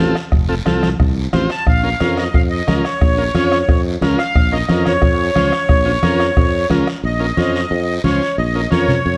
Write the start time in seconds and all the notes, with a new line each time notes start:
0.00 A1 C4 F4 A4
0.15 bombo rim, short guiro
0.32 F1, bombo low, bombo rim, long guiro
0.49 C4 F4 A4
0.65 C2 C4 F4 A4, bombo rim, high conga, short guiro
0.83 bombo rim, high conga, short guiro
1.00 C2, bombo low, bombo rim, long guiro
1.33 A1 C4 F4 C5, bombo rim, high conga, short guiro
1.50 A5, bombo rim, short guiro
1.66 A#1 F5, bombo low, bombo rim, long guiro
1.83 C#4 F4 A#4
2.00 F2 C#4 F4 A#4, bombo rim, high conga, short guiro
2.17 D#5, bombo rim, short guiro
2.34 F2 F5, bombo low, bombo rim, long guiro
2.50 D#5
2.67 C#2 C#4 F4 A#4, bombo rim, high conga, short guiro
2.84 C#5, bombo rim, short guiro
3.01 A#1, bombo low, bombo rim, long guiro
3.17 C#4 F4 A#4
3.35 F2 C#4 F4 C#5, bombo rim, high conga, short guiro
3.52 bombo rim, short guiro
3.69 F2, bombo low, bombo rim, long guiro
4.01 C#2 C#4 F4 A#4, bombo rim, high conga, short guiro
4.19 F5, bombo rim, short guiro
4.35 A#1, bombo low, bombo rim, long guiro
4.52 C#4 F4 A#4 D#5
4.69 F2 C#4 F4 A#4, bombo rim, high conga, short guiro
4.86 C#5, bombo rim, high conga, short guiro
5.02 F2, bombo low, bombo rim, long guiro
5.35 C#2 C#4 F4 C5, bombo rim, high conga, short guiro
5.52 bombo rim, short guiro
5.69 A#1, bombo low, bombo rim, long guiro
5.85 C#4 F4 C5
6.02 F2 C#4 F4 A#4, bombo rim, high conga, short guiro
6.20 bombo rim, short guiro
6.37 F2, bombo low, bombo rim, long guiro
6.70 C#2 C#4 F4 A#4, bombo rim, high conga, short guiro
6.87 bombo rim, short guiro
7.04 A#1 D#5, long guiro
7.20 C#4 F4 A#4
7.37 F2 C#4 F4 C5, high conga, short guiro
7.56 short guiro
7.71 F2, long guiro
8.04 C#2 C#4 F4 C5 C#5, high conga, short guiro
8.23 short guiro
8.38 A#1 D#5, long guiro
8.55 C#4 F4 A#4
8.71 F2 C#4 F4 A#4 C#5, high conga, short guiro
8.88 low conga, short guiro
9.06 F2, long guiro